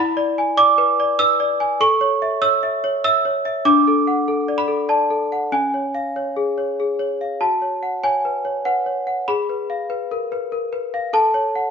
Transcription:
0.00 1.77 E4 medium
0.00 0.58 B5 loud
0.17 0.50 D5 medium
0.38 0.71 G#5 medium
0.57 0.90 D5 medium
0.57 1.19 D6 loud
0.78 1.11 B4 medium
1.00 1.32 D5 medium
1.19 1.52 B4 medium
1.19 1.81 E6 loud
1.40 1.73 D5 medium
1.60 1.81 G#5 medium
1.81 3.61 A4 medium
1.81 2.42 C#6 loud
2.01 2.34 C#5 medium
2.22 2.55 E5 medium
2.42 2.75 C#5 medium
2.42 3.03 E6 loud
2.63 2.96 E5 medium
2.84 3.17 C#5 medium
3.04 3.37 E5 medium
3.04 3.66 E6 loud
3.25 3.58 C#5 medium
3.45 3.66 E5 medium
3.65 5.48 D4 medium
3.65 4.58 D6 loud
3.87 4.20 A4 medium
4.07 4.40 F#5 medium
4.28 4.61 A4 medium
4.48 4.81 D5 medium
4.58 4.89 B5 loud
4.68 5.02 A4 medium
4.89 5.23 D5 medium
4.89 5.52 A5 medium
5.10 5.44 A4 soft
5.32 5.53 F#5 soft
5.52 7.37 C#4 medium
5.52 7.10 G#5 medium
5.74 6.07 C#5 soft
5.95 6.28 F5 soft
6.16 6.49 C#5 soft
6.37 6.70 G#4 medium
6.58 6.91 C#5 soft
6.80 7.12 G#4 soft
6.99 7.33 C#5 soft
7.21 7.41 F5 soft
7.41 9.24 F#4 medium
7.41 8.03 A5 medium
7.62 7.95 C#5 soft
7.83 8.16 F#5 soft
8.04 8.37 C#5 soft
8.04 8.66 G#5 medium
8.25 8.45 B4 soft
8.45 8.78 C#5 soft
8.65 8.86 B4 soft
8.65 9.06 F#5 medium
8.86 9.20 C#5 soft
9.07 9.28 F#5 soft
9.28 11.10 G#4 medium
9.28 11.13 B5 medium
9.50 9.82 B4 soft
9.70 10.03 F5 soft
9.90 10.23 B4 medium
10.11 10.32 A#4 medium
10.32 10.65 B4 medium
10.52 10.73 A#4 soft
10.73 11.05 B4 medium
10.94 11.14 F5 medium
11.13 11.71 A4 medium
11.13 11.71 A5 medium
11.34 11.67 C#5 soft
11.55 11.71 F#5 medium

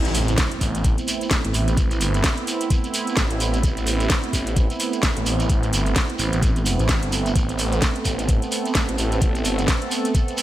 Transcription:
0.00 0.36 A1 loud
0.00 10.42 A3 medium
0.00 10.42 B3 medium
0.00 10.42 C4 medium
0.00 7.34 E4 medium
0.00 impact medium
0.05 closed hi-hat soft
0.05 shekere soft
0.14 open hi-hat loud
0.14 shekere loud
0.28 closed hi-hat soft
0.28 shekere soft
0.37 kick loud
0.37 snare loud
0.37 closed hi-hat medium
0.37 shekere medium
0.52 closed hi-hat soft
0.61 0.96 A1 loud
0.61 kick medium
0.61 open hi-hat medium
0.61 shekere medium
0.75 closed hi-hat medium
0.75 shekere soft
0.84 kick loud
0.84 closed hi-hat medium
0.84 shekere medium
0.98 closed hi-hat soft
0.98 shekere soft
1.08 open hi-hat loud
1.08 shekere medium
1.21 closed hi-hat soft
1.21 shekere soft
1.31 kick loud
1.31 snare loud
1.31 closed hi-hat medium
1.31 shekere medium
1.45 1.53 A1 loud
1.45 closed hi-hat medium
1.54 1.99 A1 loud
1.54 open hi-hat medium
1.54 shekere medium
1.67 closed hi-hat soft
1.67 shekere soft
1.77 kick loud
1.77 closed hi-hat medium
1.77 shekere medium
1.91 closed hi-hat soft
1.91 shekere soft
2.01 2.22 G1 medium
2.01 open hi-hat loud
2.01 shekere medium
2.14 closed hi-hat soft
2.14 shekere soft
2.24 kick loud
2.24 snare loud
2.24 closed hi-hat medium
2.24 shekere medium
2.38 closed hi-hat soft
2.47 open hi-hat loud
2.47 shekere medium
2.61 closed hi-hat medium
2.61 shekere soft
2.70 kick loud
2.70 closed hi-hat medium
2.70 shekere medium
2.84 closed hi-hat soft
2.84 shekere soft
2.94 open hi-hat loud
2.94 shekere loud
3.07 closed hi-hat soft
3.07 shekere soft
3.17 3.28 A1 loud
3.17 kick loud
3.17 snare loud
3.17 closed hi-hat medium
3.17 shekere medium
3.31 3.62 A1 medium
3.31 closed hi-hat medium
3.40 open hi-hat medium
3.40 shekere medium
3.53 closed hi-hat soft
3.53 shekere soft
3.63 kick loud
3.63 closed hi-hat medium
3.63 shekere soft
3.77 closed hi-hat soft
3.77 shekere soft
3.87 open hi-hat loud
3.87 shekere medium
4.00 closed hi-hat soft
4.00 shekere soft
4.10 kick loud
4.10 snare loud
4.10 closed hi-hat medium
4.10 shekere medium
4.24 closed hi-hat soft
4.33 4.68 A1 loud
4.33 kick medium
4.33 open hi-hat loud
4.33 shekere loud
4.46 closed hi-hat medium
4.46 shekere soft
4.56 kick loud
4.56 closed hi-hat medium
4.56 shekere medium
4.70 closed hi-hat soft
4.70 shekere soft
4.80 open hi-hat loud
4.80 shekere loud
4.93 closed hi-hat soft
4.93 shekere soft
5.03 kick loud
5.03 snare loud
5.03 closed hi-hat medium
5.03 shekere medium
5.17 5.25 A1 loud
5.17 closed hi-hat medium
5.26 5.71 A1 medium
5.26 open hi-hat medium
5.26 shekere medium
5.39 closed hi-hat soft
5.39 shekere soft
5.49 kick loud
5.49 closed hi-hat medium
5.49 shekere medium
5.63 closed hi-hat soft
5.63 shekere soft
5.73 5.94 G1 loud
5.73 open hi-hat loud
5.73 shekere loud
5.86 closed hi-hat soft
5.86 shekere soft
5.95 kick loud
5.95 snare loud
5.95 closed hi-hat medium
5.95 shekere medium
6.10 closed hi-hat soft
6.19 6.31 A1 loud
6.19 open hi-hat medium
6.19 shekere medium
6.32 6.77 A1 medium
6.32 closed hi-hat medium
6.32 shekere soft
6.42 kick loud
6.42 closed hi-hat medium
6.42 shekere medium
6.56 closed hi-hat soft
6.56 shekere soft
6.66 open hi-hat loud
6.66 shekere loud
6.79 7.00 A1 loud
6.79 closed hi-hat soft
6.79 shekere soft
6.89 kick loud
6.89 snare loud
6.89 closed hi-hat medium
6.89 shekere medium
7.03 7.34 G1 loud
7.03 closed hi-hat medium
7.12 open hi-hat medium
7.12 shekere medium
7.26 closed hi-hat soft
7.26 shekere soft
7.36 7.81 A1 loud
7.36 10.42 A4 medium
7.36 kick loud
7.36 closed hi-hat medium
7.36 shekere medium
7.49 closed hi-hat soft
7.49 shekere soft
7.59 open hi-hat loud
7.59 shekere medium
7.72 closed hi-hat soft
7.72 shekere soft
7.82 kick loud
7.82 snare loud
7.82 closed hi-hat medium
7.82 shekere medium
7.96 closed hi-hat soft
8.05 8.40 A1 loud
8.05 kick medium
8.05 open hi-hat loud
8.05 shekere medium
8.19 closed hi-hat soft
8.19 shekere soft
8.28 kick loud
8.28 closed hi-hat medium
8.28 shekere soft
8.42 closed hi-hat soft
8.42 shekere soft
8.52 open hi-hat loud
8.52 shekere medium
8.65 closed hi-hat soft
8.65 shekere soft
8.75 kick loud
8.75 snare loud
8.75 closed hi-hat medium
8.75 shekere medium
8.89 8.97 A1 loud
8.89 closed hi-hat medium
8.98 9.43 A1 loud
8.98 open hi-hat medium
8.98 shekere medium
9.12 closed hi-hat soft
9.12 shekere soft
9.21 kick loud
9.21 closed hi-hat medium
9.21 shekere medium
9.35 closed hi-hat soft
9.35 shekere soft
9.45 9.67 G1 loud
9.45 open hi-hat loud
9.45 shekere medium
9.58 closed hi-hat soft
9.58 shekere soft
9.67 kick loud
9.67 snare loud
9.67 closed hi-hat medium
9.67 shekere medium
9.82 closed hi-hat soft
9.91 open hi-hat medium
9.91 shekere medium
10.05 closed hi-hat soft
10.05 shekere soft
10.15 kick loud
10.15 closed hi-hat medium
10.15 shekere soft
10.28 closed hi-hat soft
10.28 shekere soft
10.37 open hi-hat medium
10.37 shekere medium

